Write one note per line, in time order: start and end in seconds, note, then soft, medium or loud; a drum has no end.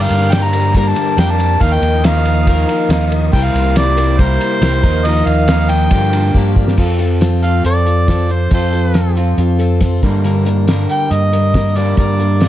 0.00 0.31 G2 medium
0.00 0.31 D3 medium
0.00 0.30 G3 medium
0.00 0.32 A#3 medium
0.00 0.32 D4 medium
0.00 0.35 A#4 medium
0.00 3.29 A#4 medium
0.00 1.59 D5 medium
0.00 0.35 F5 loud
0.00 1.59 G5 medium
0.00 1.59 D6 medium
0.10 0.92 G2 medium
0.10 ride medium
0.30 0.74 G2 medium
0.30 0.74 D3 medium
0.30 0.53 G3 medium
0.30 0.53 A#3 medium
0.30 0.53 D4 medium
0.30 0.45 G5 medium
0.30 snare loud
0.30 ride medium
0.35 0.52 A#4 medium
0.44 0.75 A#5 loud
0.53 0.75 G3 soft
0.53 0.75 A#3 soft
0.53 0.75 D4 soft
0.53 0.74 A#4 soft
0.53 ride medium
0.75 1.18 G2 medium
0.75 1.18 D3 medium
0.75 1.16 G3 medium
0.75 1.18 A#3 medium
0.75 1.18 D4 medium
0.75 1.19 A#4 medium
0.75 0.89 A#5 medium
0.75 kick medium
0.75 ride loud
0.88 1.20 A5 loud
0.95 1.16 G3 medium
0.95 1.18 A#3 medium
0.95 1.18 D4 medium
0.95 1.20 A#4 medium
0.95 ride medium
1.17 1.57 F2 loud
1.17 1.39 G3 medium
1.17 1.39 A#3 medium
1.17 1.38 D4 medium
1.17 1.37 A#4 medium
1.17 1.32 G5 loud
1.17 snare loud
1.17 ride medium
1.30 1.64 A5 loud
1.39 1.59 G3 soft
1.39 1.59 A#3 soft
1.39 1.60 D4 soft
1.39 1.59 A#4 soft
1.39 ride medium
1.59 1.80 D#2 medium
1.59 2.03 D#3 medium
1.59 2.02 F3 medium
1.59 2.04 A#3 medium
1.59 2.04 D#4 medium
1.59 2.06 A#4 medium
1.59 3.31 D#5 medium
1.59 3.31 F5 medium
1.59 3.31 D#6 medium
1.59 kick loud
1.59 ride loud
1.63 1.75 F5 loud
1.73 2.07 G5 loud
1.82 2.64 D#2 loud
1.82 ride medium
2.03 2.47 D#3 medium
2.03 2.47 F3 medium
2.03 2.47 A#3 medium
2.03 2.48 D#4 medium
2.03 2.49 A#4 medium
2.03 3.12 F5 medium
2.03 snare loud
2.03 ride loud
2.25 2.47 A#3 medium
2.25 2.48 D#4 medium
2.25 2.50 A#4 medium
2.25 ride medium
2.47 2.90 D#3 medium
2.47 2.89 F3 medium
2.47 2.91 A#3 medium
2.47 2.91 D#4 medium
2.47 2.92 A#4 medium
2.47 kick medium
2.47 ride loud
2.68 2.90 A#3 medium
2.68 2.90 D#4 medium
2.68 2.92 A#4 medium
2.68 ride medium
2.89 3.29 D#2 medium
2.89 3.12 F3 medium
2.89 3.12 A#3 medium
2.89 3.12 D#4 medium
2.89 3.10 A#4 medium
2.89 snare loud
2.89 ride loud
3.12 3.33 A#3 soft
3.12 3.34 D#4 soft
3.12 3.33 A#4 medium
3.12 ride medium
3.33 3.53 C2 medium
3.33 3.76 C3 medium
3.33 3.74 G3 medium
3.33 3.77 A#3 medium
3.33 3.77 E4 loud
3.33 6.75 A#4 medium
3.33 3.78 A#4 medium
3.33 4.83 C5 medium
3.33 4.82 G5 medium
3.33 3.46 G5 loud
3.33 4.82 C6 medium
3.33 kick loud
3.33 crash medium
3.44 3.76 F5 loud
3.54 4.37 C2 medium
3.54 ride medium
3.75 4.19 C3 medium
3.75 3.98 G3 medium
3.75 3.98 A#3 medium
3.75 3.98 E4 medium
3.75 3.96 A#4 medium
3.75 4.22 D5 loud
3.75 snare loud
3.75 ride loud
3.98 4.18 A#3 soft
3.98 4.19 E4 soft
3.98 4.19 A#4 soft
3.98 ride medium
4.18 4.62 C3 medium
4.18 4.60 G3 medium
4.18 4.61 A#3 medium
4.18 4.62 E4 medium
4.18 4.63 A#4 medium
4.18 5.07 C5 medium
4.18 kick medium
4.18 ride medium
4.40 4.62 A#3 medium
4.40 4.63 E4 medium
4.40 4.64 A#4 medium
4.40 ride medium
4.61 4.82 C2 medium
4.61 4.83 G3 medium
4.61 4.84 A#3 medium
4.61 4.84 E4 medium
4.61 4.82 A#4 medium
4.61 snare loud
4.61 ride medium
4.83 5.23 D#2 loud
4.83 5.04 D#3 medium
4.83 5.05 F3 medium
4.83 5.05 A#3 medium
4.83 5.06 D#4 soft
4.83 5.05 A#4 medium
4.83 5.91 D#5 medium
4.83 6.77 F5 medium
4.83 5.91 D#6 medium
4.83 kick loud
4.83 ride medium
5.05 5.49 D#3 medium
5.05 5.47 F3 medium
5.05 5.48 A#3 medium
5.05 5.49 D#4 medium
5.05 5.49 A#4 medium
5.05 5.28 D#5 medium
5.05 ride medium
5.26 5.88 D#2 medium
5.26 5.71 F5 loud
5.26 ride medium
5.48 5.91 D#3 medium
5.48 5.70 F3 medium
5.48 5.70 A#3 medium
5.48 5.69 D#4 medium
5.48 5.67 A#4 medium
5.48 snare loud
5.48 ride medium
5.68 5.90 A#3 soft
5.68 5.91 D#4 soft
5.68 5.91 A#4 soft
5.68 6.35 G5 medium
5.68 ride medium
5.90 6.35 G2 medium
5.90 6.31 G2 loud
5.90 6.35 D3 medium
5.90 6.32 F3 medium
5.90 6.33 A#3 medium
5.90 6.34 D4 medium
5.90 6.35 G4 medium
5.90 6.78 G5 medium
5.90 6.78 D6 medium
5.90 kick medium
5.90 ride medium
5.95 6.12 A#4 medium
6.13 6.33 F3 medium
6.13 6.35 A#3 medium
6.13 6.36 D4 medium
6.13 6.37 A#4 medium
6.13 ride medium
6.33 6.74 G2 loud
6.33 6.56 F3 medium
6.33 6.56 A#3 medium
6.33 6.56 D4 medium
6.33 6.55 G4 medium
6.33 kick medium
6.38 6.79 A#4 medium
6.56 6.76 F3 soft
6.56 6.77 A#3 medium
6.56 6.78 D4 medium
6.56 6.78 G4 medium
6.56 kick medium
6.68 snare medium
6.77 7.61 F2 medium
6.77 6.99 F3 medium
6.77 7.00 C4 medium
6.77 6.99 F4 medium
6.77 6.98 A4 medium
6.77 kick loud
6.77 crash medium
6.99 7.20 C4 medium
6.99 7.20 F4 medium
6.99 7.21 A4 medium
6.99 closed hi-hat medium
7.21 7.62 F3 medium
7.21 7.63 C4 medium
7.21 7.64 F4 medium
7.21 7.65 A4 medium
7.21 snare loud
7.21 closed hi-hat medium
7.42 8.51 C4 medium
7.42 8.51 F4 medium
7.42 8.50 A4 medium
7.42 7.63 F5 loud
7.42 closed hi-hat medium
7.47 8.50 F3 medium
7.63 8.48 F2 medium
7.63 7.86 F3 medium
7.63 7.87 C4 medium
7.63 7.85 F4 medium
7.63 7.84 A4 medium
7.63 8.33 D5 medium
7.63 closed hi-hat medium
7.85 8.07 C4 soft
7.85 8.08 F4 soft
7.85 8.08 A4 soft
7.85 closed hi-hat medium
8.08 8.30 F3 medium
8.08 8.30 C4 medium
8.08 8.29 F4 medium
8.08 8.27 A4 medium
8.08 kick medium
8.08 snare loud
8.08 closed hi-hat medium
8.29 8.51 C4 soft
8.29 8.51 F4 soft
8.29 8.51 A4 soft
8.29 8.53 C5 medium
8.29 closed hi-hat soft
8.51 9.34 F2 loud
8.51 8.73 F3 medium
8.51 8.74 C4 medium
8.51 8.73 F4 medium
8.51 8.71 A4 medium
8.51 9.14 C5 medium
8.51 kick loud
8.51 closed hi-hat medium
8.72 8.94 C4 soft
8.72 8.94 F4 soft
8.72 8.95 A4 medium
8.72 closed hi-hat medium
8.94 9.36 F3 medium
8.94 9.37 C4 medium
8.94 9.38 F4 medium
8.94 9.39 A4 medium
8.94 snare loud
8.94 closed hi-hat medium
9.16 10.03 C4 medium
9.16 10.02 F4 medium
9.16 10.02 A4 medium
9.16 closed hi-hat medium
9.20 10.04 F3 medium
9.37 9.99 F2 loud
9.37 9.60 F3 medium
9.37 9.60 C4 medium
9.37 9.59 F4 medium
9.37 9.58 A4 medium
9.37 closed hi-hat medium
9.59 9.80 C4 soft
9.59 9.81 F4 medium
9.59 9.81 A4 medium
9.59 closed hi-hat medium
9.81 10.03 F3 medium
9.81 10.03 C4 medium
9.81 10.03 F4 medium
9.81 10.02 A4 medium
9.81 kick medium
9.81 snare loud
9.81 closed hi-hat medium
10.02 10.67 G2 medium
10.02 10.86 G2 loud
10.02 10.67 D3 medium
10.02 10.23 G3 soft
10.02 10.24 A#3 soft
10.02 10.24 D4 soft
10.02 10.24 A#4 medium
10.02 kick medium
10.02 closed hi-hat medium
10.06 10.71 A#4 medium
10.23 10.46 G2 medium
10.23 10.47 D3 medium
10.23 10.46 G3 medium
10.23 10.45 A#3 medium
10.23 10.45 D4 medium
10.23 10.44 A#4 loud
10.23 closed hi-hat medium
10.45 10.67 G3 soft
10.45 10.67 A#3 medium
10.45 10.67 D4 medium
10.45 10.68 A#4 medium
10.45 closed hi-hat medium
10.67 11.11 G2 medium
10.67 11.11 D3 medium
10.67 11.10 G3 medium
10.67 11.11 A#3 medium
10.67 11.11 D4 medium
10.67 11.12 A#4 medium
10.67 snare loud
10.67 closed hi-hat medium
10.89 11.13 G5 loud
10.89 closed hi-hat medium
11.10 11.94 G2 medium
11.10 11.33 G3 soft
11.10 11.33 A#3 medium
11.10 11.32 D4 medium
11.10 11.32 A#4 medium
11.10 11.78 D#5 medium
11.10 closed hi-hat medium
11.33 11.54 G3 soft
11.33 11.54 A#3 soft
11.33 11.54 D4 soft
11.33 11.55 A#4 medium
11.33 closed hi-hat medium
11.54 11.77 G2 medium
11.54 11.77 D3 medium
11.54 11.77 G3 medium
11.54 11.76 A#3 medium
11.54 11.75 D4 medium
11.54 11.74 A#4 medium
11.54 kick medium
11.54 snare loud
11.54 closed hi-hat medium
11.75 12.39 G2 medium
11.75 12.40 D3 medium
11.75 11.97 G3 soft
11.75 11.98 A#3 soft
11.75 11.98 D4 soft
11.75 11.98 A#4 soft
11.75 11.97 D5 medium
11.75 closed hi-hat medium
11.97 12.48 G2 loud
11.97 12.20 G2 medium
11.97 12.20 D3 medium
11.97 12.20 G3 medium
11.97 12.20 A#3 medium
11.97 12.20 D4 medium
11.97 12.19 A#4 medium
11.97 12.48 D5 medium
11.97 kick medium
11.97 closed hi-hat medium
12.20 12.42 G3 soft
12.20 12.42 A#3 medium
12.20 12.42 D4 soft
12.20 12.42 A#4 medium
12.20 closed hi-hat medium
12.41 12.48 G2 medium
12.41 12.48 D3 medium
12.41 12.48 G3 medium
12.41 12.48 A#3 medium
12.41 12.48 D4 medium
12.41 12.48 A#4 medium
12.41 snare loud
12.41 closed hi-hat medium